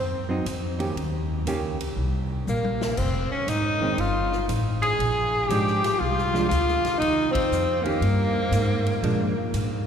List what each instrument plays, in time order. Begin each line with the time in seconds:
Already playing: upright bass F#2, alto saxophone C4, tenor saxophone C4
0.29 hollow-body jazz guitar F#3 C4 D#4
0.45 upright bass F2, hi-hat pedal, ride
0.79 hollow-body jazz guitar D#3 A#3 C#4 G4, ride
0.96 upright bass D#2, ride
1.46 upright bass C#2, hollow-body jazz guitar D#3 A#3 C#4 G4, hi-hat pedal, ride
1.80 ride
1.96 upright bass C2
2.47 upright bass A#1, alto saxophone A#3, tenor saxophone A#3, hi-hat pedal, high tom
2.64 high tom
2.81 snare
2.97 upright bass F1, alto saxophone C4, tenor saxophone C4, kick, crash
3.31 alto saxophone C#4, tenor saxophone C#4, muted upright bass stroke
3.47 upright bass G#1, alto saxophone D#4, tenor saxophone D#4, hi-hat pedal, ride
3.81 hollow-body jazz guitar D#3 G#3 C4
3.98 upright bass G1, alto saxophone F4, tenor saxophone F4, ride
4.32 snare
4.49 upright bass A1, hi-hat pedal, ride
4.82 alto saxophone G#4, tenor saxophone G#4, ride
4.99 upright bass A#1, ride
5.48 upright bass G#1, hollow-body jazz guitar F3 G#3 D4, tenor saxophone G4, alto saxophone G4, hi-hat pedal, ride
5.67 snare
5.84 snare, ride
5.99 upright bass C2, alto saxophone F4, tenor saxophone F4
6.18 snare
6.34 hollow-body jazz guitar F3 G#3 D4, snare
6.48 upright bass D2, tenor saxophone F4, alto saxophone F4, hi-hat pedal, ride
6.68 snare
6.84 muted upright bass stroke, snare, ride
6.98 upright bass D#2, alto saxophone D#4, tenor saxophone D#4, ride
7.31 alto saxophone C4, tenor saxophone C4
7.35 kick, ride
7.51 upright bass F2, hi-hat pedal
7.81 hollow-body jazz guitar D#3, alto saxophone A#3, tenor saxophone A#3
7.85 hollow-body jazz guitar A#3 C#4 G4, ride
8.01 upright bass G2, ride
8.52 upright bass G#2, hi-hat pedal, ride
8.86 ride
9.02 upright bass A#2, hollow-body jazz guitar F3 G#3 D4, ride
9.54 upright bass G#2, hi-hat pedal, ride